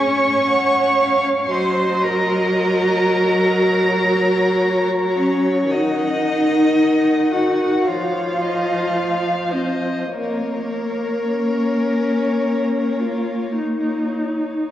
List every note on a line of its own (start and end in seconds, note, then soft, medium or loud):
0.00 1.48 C#4 medium
0.00 1.52 C#5 loud
0.00 0.47 G#5 medium
0.00 1.50 C#6 medium
0.48 1.03 F#5 medium
1.01 1.52 F5 medium
1.51 5.66 F#3 medium
1.51 2.05 C5 loud
1.51 3.60 D#5 medium
1.51 2.03 C6 medium
2.02 5.18 A#4 medium
2.02 5.17 A#5 medium
3.58 5.70 C#5 medium
5.18 5.73 C#4 medium
5.18 5.72 C#5 medium
5.70 7.88 D#3 medium
5.70 7.31 D#4 medium
5.70 7.33 D#5 medium
5.70 6.75 F#5 medium
6.77 7.88 F#5 medium
7.31 7.89 F#4 medium
7.31 7.85 F#5 medium
7.86 10.10 F3 medium
7.86 9.55 F4 medium
7.86 8.43 C#5 medium
7.86 9.52 F5 medium
8.41 8.98 D#5 medium
8.96 9.52 F5 medium
9.51 10.10 C4 medium
9.51 10.11 C5 medium
9.51 10.12 D#5 medium
10.10 11.14 A#3 medium
10.10 14.13 A#3 medium
10.10 14.16 A#4 medium
10.10 14.55 C#5 medium
11.27 13.02 C#4 medium
13.00 13.57 F4 medium
13.58 14.71 D#4 medium